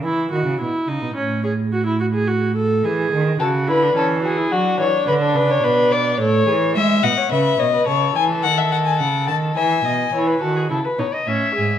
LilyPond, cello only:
\new Staff \with { instrumentName = "Cello" } { \clef bass \time 3/4 \key e \mixolydian \tempo 4 = 107 e8 dis16 cis16 b,8 cis16 b,16 a,4~ | a,2 e8 dis8 | cis8 d8 e4 fis8 e8 | d8 cis8 b,4 a,8 e8 |
gis8 b,8 cis8 b,8 cis8 e8 | dis4 cis8 dis8 e8 b,8 | e8 dis8 cis8 b,8 a,8 gis,8 | }